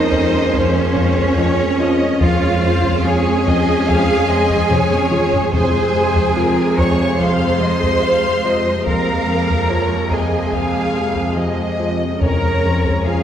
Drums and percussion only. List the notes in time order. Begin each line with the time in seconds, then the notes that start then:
0.12 taiko
0.54 taiko
0.95 taiko low
1.17 taiko
1.37 taiko low
2.21 taiko
2.83 taiko
3.46 taiko
3.88 taiko
4.50 taiko
4.71 taiko low-mid
4.91 taiko high
5.12 taiko mid
5.33 taiko low
5.53 taiko
6.15 taiko
6.78 taiko
7.20 taiko
7.82 taiko
8.86 taiko
9.48 taiko
10.11 taiko
10.52 taiko
11.15 taiko
12.21 taiko
12.85 taiko